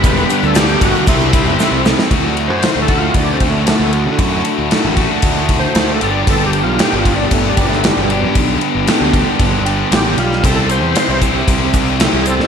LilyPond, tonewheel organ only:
\new Staff \with { instrumentName = "Tonewheel organ" } { \time 4/4 \key d \mixolydian \tempo 4 = 115 b'8. a'16 g'8 fis'8 e'4. r8 | \tuplet 3/2 { r4 c''8~ c''8 a'8 f'8 d'8 c'8 a8 } a8 r8 | r2 \tuplet 3/2 { r4 c''8~ c''8 a'8 d''8 } | \tuplet 3/2 { a'8 g'8 f'8 g'8 f'8 d'8 a8 d'8 a8 g8 <b, g>8. r16 } |
r2. g'8 f'8 | a'8 c''4 r2 <c' gis' a'>8 | }